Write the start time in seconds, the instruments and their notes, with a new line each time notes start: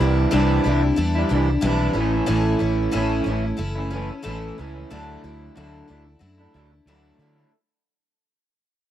Already playing: clean electric guitar C3 E3 G3 D4 E4
0.00 fingered electric bass C2, twelve-string acoustic guitar G3 D4 E4
0.33 fingered electric bass C2, clean electric guitar C3 E3 G3 D4 E4
0.64 fingered electric bass C2, clean electric guitar E3 G3 D4, twelve-string acoustic guitar E4
0.69 clean electric guitar E4
0.82 muted clean electric guitar stroke
0.96 fingered electric bass E2, twelve-string acoustic guitar E3 G3 D4 E4
1.15 clean electric guitar G3 D4 E4
1.29 fingered electric bass C2, clean electric guitar E3 G3, twelve-string acoustic guitar E4
1.34 clean electric guitar D4 E4
1.50 muted clean electric guitar stroke
1.61 fingered electric bass B1, clean electric guitar C3 E3, twelve-string acoustic guitar G3 D4 E4
1.66 clean electric guitar G3 D4 E4
1.93 fingered electric bass A1, clean electric guitar A2, twelve-string acoustic guitar A3 C#4 E4
1.98 clean electric guitar E3 A3 C#4 E4
2.13 clean electric guitar A3 C#4 E4
2.27 fingered electric bass A1, clean electric guitar A2 E3 A3, twelve-string acoustic guitar C#4
2.31 clean electric guitar C#4 E4
2.59 fingered electric bass A1, twelve-string acoustic guitar A3 C#4 E4
2.93 fingered electric bass A1, clean electric guitar A2 E3 A3 C#4, twelve-string acoustic guitar E4
2.97 clean electric guitar E4
3.24 fingered electric bass A1, clean electric guitar E3, twelve-string acoustic guitar C#4 E4
3.29 clean electric guitar A3 C#4 E4
3.45 muted clean electric guitar stroke
3.57 fingered electric bass F#1, twelve-string acoustic guitar E3 A3 C#4 E4
3.76 clean electric guitar A3 C#4 E4
3.90 clean electric guitar E3 A3, twelve-string acoustic guitar C#4 E4
3.96 clean electric guitar C#4 E4
4.11 muted clean electric guitar stroke
4.23 fingered electric bass A1, clean electric guitar A2 E3, twelve-string acoustic guitar A3 C#4 E4
4.28 clean electric guitar A3 C#4 E4
4.58 fingered electric bass C#2, clean electric guitar E3 A3 C#4 E4
4.74 clean electric guitar A3 C#4 E4
4.91 fingered electric bass D2, clean electric guitar D3 F#3 A3 D4 E4
5.24 fingered electric bass D2, twelve-string acoustic guitar A3 D4 E4
5.55 fingered electric bass D2, clean electric guitar D3 F#3 A3 D4 E4
5.88 fingered electric bass D2, clean electric guitar F#3 A3 D4, twelve-string acoustic guitar E4
5.92 clean electric guitar E4
6.06 muted clean electric guitar stroke
6.19 fingered electric bass F#2, twelve-string acoustic guitar F#3 A3 D4 E4
6.38 clean electric guitar A3 D4 E4
6.53 fingered electric bass D2, clean electric guitar F#3 A3 D4 E4
6.72 muted clean electric guitar stroke
6.86 fingered electric bass D2, clean electric guitar D3 F#3 A3 D4 E4
7.19 fingered electric bass D3, clean electric guitar F#3 A3 D4 E4
7.35 clean electric guitar D4 E4
7.39 clean electric guitar A3